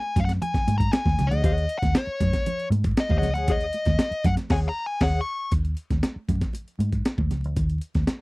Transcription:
0.00 0.19 G#5 loud
0.16 0.38 F#2 medium
0.16 0.24 F5 medium
0.16 kick medium
0.16 closed hi-hat medium
0.16 muted conga soft
0.16 high conga medium
0.16 low conga medium
0.25 0.30 F#5 medium
0.25 snare soft
0.29 closed hi-hat medium
0.42 0.74 G#5 medium
0.42 closed hi-hat loud
0.42 muted conga soft
0.42 low conga medium
0.54 kick loud
0.54 snare soft
0.54 closed hi-hat soft
0.67 0.89 G#2 medium
0.67 closed hi-hat medium
0.67 muted conga soft
0.67 high conga medium
0.78 0.92 A#5 medium
0.78 kick medium
0.78 closed hi-hat soft
0.92 1.27 G#5 medium
0.92 snare loud
0.92 closed hi-hat medium
0.92 muted conga soft
1.05 1.16 D#2 medium
1.05 kick medium
1.05 snare soft
1.05 high conga medium
1.19 1.29 C#2 medium
1.19 snare soft
1.19 closed hi-hat medium
1.19 low conga medium
1.27 1.78 D#5 loud
1.31 1.42 D2 medium
1.31 1.43 G#4 medium
1.31 1.44 C#5 medium
1.31 1.44 F#5 medium
1.31 closed hi-hat soft
1.44 1.65 D#2 loud
1.44 1.64 G#4 medium
1.44 1.64 C#5 medium
1.44 1.64 F#5 medium
1.44 kick loud
1.44 closed hi-hat loud
1.44 muted conga soft
1.58 closed hi-hat soft
1.69 closed hi-hat medium
1.79 1.96 F#5 medium
1.79 kick medium
1.83 1.93 D#2 medium
1.83 snare soft
1.83 closed hi-hat soft
1.83 high conga medium
1.95 2.67 C#5 medium
1.95 snare loud
1.95 closed hi-hat medium
1.95 muted conga soft
2.07 muted picked electric bass stroke soft
2.20 2.31 F#2 medium
2.20 kick loud
2.20 closed hi-hat medium
2.20 high conga medium
2.20 low conga medium
2.33 kick medium
2.33 snare soft
2.33 closed hi-hat medium
2.46 closed hi-hat loud
2.46 muted conga soft
2.46 low conga medium
2.60 closed hi-hat soft
2.70 2.92 G#2 medium
2.70 closed hi-hat medium
2.70 muted conga soft
2.70 high conga medium
2.84 kick loud
2.84 closed hi-hat soft
2.97 3.16 D#5 medium
2.97 snare loud
2.97 closed hi-hat medium
3.09 3.22 D#2 loud
3.09 3.30 G#4 medium
3.09 3.30 C#5 medium
3.09 3.30 F#5 medium
3.09 kick loud
3.09 high conga medium
3.18 3.32 D#5 medium
3.22 3.35 C#2 medium
3.22 snare soft
3.22 closed hi-hat medium
3.22 low conga medium
3.34 3.48 D2 medium
3.34 3.49 C#5 medium
3.34 3.50 F#5 medium
3.34 3.48 G#5 medium
3.34 closed hi-hat soft
3.38 3.48 G#4 soft
3.48 3.69 D#2 loud
3.48 3.65 G#4 medium
3.48 3.65 C#5 medium
3.48 4.28 D#5 medium
3.48 3.65 F#5 medium
3.48 kick loud
3.48 closed hi-hat medium
3.61 closed hi-hat soft
3.73 closed hi-hat medium
3.73 muted conga soft
3.85 3.97 D#2 medium
3.85 kick medium
3.85 snare soft
3.85 closed hi-hat soft
3.85 high conga medium
3.99 snare loud
3.99 closed hi-hat medium
3.99 muted conga soft
4.11 muted picked electric bass stroke soft
4.11 closed hi-hat soft
4.24 4.35 F#2 medium
4.24 4.32 F#5 medium
4.24 kick loud
4.24 closed hi-hat medium
4.24 high conga medium
4.24 low conga medium
4.37 snare soft
4.37 closed hi-hat medium
4.50 4.67 D#2 loud
4.50 4.69 G#4 loud
4.50 4.69 C#5 loud
4.50 4.68 F#5 loud
4.50 4.56 G#5 medium
4.50 kick loud
4.50 snare loud
4.50 crash medium
4.69 4.84 A#5 medium
4.86 5.03 G#5 medium
5.01 5.18 D#2 loud
5.01 5.20 G#4 medium
5.01 5.19 C#5 loud
5.01 5.19 F#5 loud
5.01 5.20 F#5 loud
5.01 kick loud
5.01 snare loud
5.01 crash medium
5.21 5.51 C#6 medium
5.52 5.73 D#2 medium
5.52 kick loud
5.52 closed hi-hat medium
5.52 muted conga soft
5.65 closed hi-hat soft
5.77 closed hi-hat medium
5.90 6.01 D#2 medium
5.90 kick medium
5.90 snare soft
5.90 closed hi-hat soft
5.90 high conga medium
6.03 snare medium
6.03 closed hi-hat medium
6.16 muted picked electric bass stroke soft
6.29 6.39 F#2 medium
6.29 kick medium
6.29 closed hi-hat medium
6.29 high conga medium
6.29 low conga medium
6.41 kick medium
6.41 snare soft
6.41 closed hi-hat soft
6.53 closed hi-hat loud
6.53 muted conga soft
6.68 closed hi-hat soft
6.79 7.01 G#2 medium
6.79 closed hi-hat medium
6.79 muted conga soft
6.79 high conga medium
6.92 kick medium
6.92 closed hi-hat soft
7.05 snare medium
7.05 closed hi-hat medium
7.05 muted conga soft
7.18 7.31 D#2 medium
7.18 kick medium
7.18 high conga medium
7.31 7.45 C#2 medium
7.31 snare soft
7.31 closed hi-hat medium
7.31 low conga medium
7.44 7.55 D2 medium
7.44 closed hi-hat soft
7.56 7.78 D#2 medium
7.56 kick loud
7.56 closed hi-hat medium
7.56 muted conga soft
7.70 closed hi-hat soft
7.81 closed hi-hat medium
7.95 8.06 D#2 medium
7.95 kick medium
7.95 snare soft
7.95 closed hi-hat soft
7.95 high conga medium
8.07 snare loud
8.07 closed hi-hat medium
8.07 muted conga soft

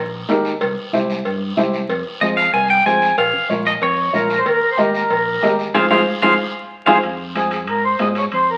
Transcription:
0.00 0.22 A#1 loud
0.29 0.55 D#2 medium
0.29 0.51 D#4 medium
0.29 0.51 G4 medium
0.29 0.51 A#4 loud
0.29 high conga medium
0.29 low timbale medium
0.29 short guiro medium
0.45 short guiro medium
0.61 0.74 C2 medium
0.61 cowbell loud
0.61 high conga soft
0.61 long guiro medium
0.93 1.19 C2 loud
0.93 1.16 E4 medium
0.93 1.16 G4 medium
0.93 1.16 C5 medium
0.93 high conga medium
0.93 short guiro medium
1.10 short guiro medium
1.25 1.51 G2 loud
1.25 cowbell medium
1.25 high conga soft
1.25 long guiro medium
1.57 1.83 C2 medium
1.57 1.79 E4 medium
1.57 1.80 G4 medium
1.57 1.80 C5 medium
1.57 high conga medium
1.57 low conga medium
1.57 short guiro medium
1.73 short guiro medium
1.89 2.02 F2 medium
1.89 cowbell loud
1.89 high conga soft
1.89 long guiro medium
2.21 2.47 F2 loud
2.21 2.44 F4 medium
2.21 2.44 G#4 medium
2.21 2.44 C5 medium
2.21 2.26 D#5 medium
2.21 high conga medium
2.21 short guiro medium
2.37 2.52 F5 loud
2.37 short guiro medium
2.53 2.79 C2 loud
2.53 2.70 G#5 loud
2.53 cowbell medium
2.53 high conga soft
2.53 long guiro medium
2.70 2.85 G5 loud
2.85 3.11 F2 medium
2.85 3.08 F4 medium
2.85 3.08 G#4 medium
2.85 3.09 C5 medium
2.85 3.16 G#5 loud
2.85 high conga medium
2.85 short guiro medium
3.02 short guiro medium
3.17 3.30 A#1 medium
3.17 3.48 F5 loud
3.17 cowbell loud
3.17 high conga soft
3.17 long guiro medium
3.33 low conga medium
3.49 3.75 A#1 medium
3.49 3.72 F4 medium
3.49 3.72 A#4 medium
3.49 3.72 C#5 medium
3.49 high conga medium
3.49 short guiro medium
3.66 3.72 D#5 medium
3.66 short guiro medium
3.81 4.07 F2 loud
3.81 4.27 C#5 medium
3.81 cowbell medium
3.81 high conga soft
3.81 long guiro medium
4.13 4.40 A#1 medium
4.13 4.36 F4 medium
4.13 4.36 A#4 medium
4.13 4.39 A#4 loud
4.13 4.36 C#5 medium
4.13 high conga medium
4.13 low conga medium
4.13 short guiro medium
4.30 short guiro medium
4.38 4.46 C5 loud
4.46 4.59 D#2 medium
4.46 4.69 A#4 loud
4.46 cowbell medium
4.46 high conga soft
4.46 long guiro medium
4.71 4.79 C5 loud
4.77 5.04 D#2 medium
4.77 5.00 G4 medium
4.77 5.01 A#4 medium
4.77 4.93 A#4 medium
4.77 5.01 D#5 loud
4.77 high conga medium
4.77 short guiro medium
4.94 5.55 A#4 medium
4.94 short guiro medium
5.10 5.36 A#1 loud
5.10 cowbell medium
5.10 high conga soft
5.10 long guiro medium
5.42 5.68 D#2 medium
5.42 5.65 G4 medium
5.42 5.65 A#4 medium
5.42 5.65 D#5 medium
5.42 high conga medium
5.42 low timbale medium
5.42 short guiro medium
5.59 short guiro medium
5.74 5.87 F2 loud
5.74 5.85 F4 medium
5.74 5.86 F4 medium
5.74 5.85 G#4 medium
5.74 5.86 G#4 loud
5.74 5.85 C5 medium
5.74 5.86 C5 loud
5.74 5.85 F5 medium
5.74 high conga loud
5.74 high timbale loud
5.74 long guiro loud
5.91 6.03 F2 loud
5.91 6.01 F4 loud
5.91 6.01 F4 medium
5.91 6.01 G#4 loud
5.91 6.01 G#4 medium
5.91 6.01 C5 medium
5.91 6.01 C5 loud
5.91 6.01 C5 medium
5.91 6.01 F5 loud
5.91 high conga loud
5.91 high timbale loud
5.91 long guiro loud
6.22 6.35 F2 loud
6.22 6.33 F4 medium
6.22 6.34 F4 loud
6.22 6.33 G#4 loud
6.22 6.33 G#4 medium
6.22 6.34 G#4 medium
6.22 6.33 C5 loud
6.22 6.33 C5 medium
6.22 6.34 C5 loud
6.22 6.33 F5 loud
6.22 high conga loud
6.22 high timbale loud
6.22 long guiro loud
6.86 6.99 F2 loud
6.86 6.97 F4 loud
6.86 6.98 F4 loud
6.86 6.97 G#4 medium
6.86 6.98 G#4 loud
6.86 6.97 G#4 medium
6.86 6.97 C5 medium
6.86 6.98 C5 loud
6.86 6.97 F5 medium
6.86 high conga loud
6.86 high timbale loud
6.86 long guiro medium
7.03 7.68 F2 medium
7.03 high conga soft
7.03 high timbale medium
7.03 long guiro medium
7.35 7.58 F4 medium
7.35 7.58 G#4 medium
7.35 7.51 G#4 medium
7.35 7.58 C5 medium
7.35 high conga medium
7.35 high timbale medium
7.35 short guiro medium
7.51 7.60 G#4 medium
7.51 high timbale medium
7.51 short guiro medium
7.67 7.94 G#2 medium
7.67 7.84 A#4 medium
7.67 high conga soft
7.67 high timbale medium
7.67 long guiro medium
7.85 8.01 C5 medium
7.99 8.26 G#2 medium
7.99 8.22 F4 medium
7.99 8.22 G#4 medium
7.99 8.22 C5 medium
7.99 8.08 D#5 loud
7.99 high conga medium
7.99 high timbale medium
7.99 low timbale medium
7.99 short guiro medium
8.15 8.25 C#5 medium
8.15 high timbale medium
8.15 short guiro medium
8.32 8.57 F2 medium
8.32 8.49 C5 medium
8.32 high conga soft
8.32 high timbale medium
8.32 long guiro medium
8.50 8.57 A#4 medium

